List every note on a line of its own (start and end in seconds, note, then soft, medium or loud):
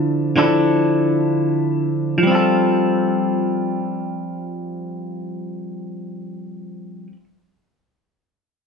0.00 0.34 D3 medium
0.00 0.36 F3 medium
0.00 0.36 D4 medium
0.00 0.37 E4 medium
0.00 0.39 A4 medium
0.36 2.18 D3 medium
0.36 2.18 F3 medium
0.36 2.24 D4 medium
0.36 2.24 E4 medium
0.36 2.26 A4 medium
2.18 7.07 F3 soft
2.23 7.12 G3 soft
2.27 7.16 C4 soft
2.27 7.20 F4 soft
2.35 7.24 A4 medium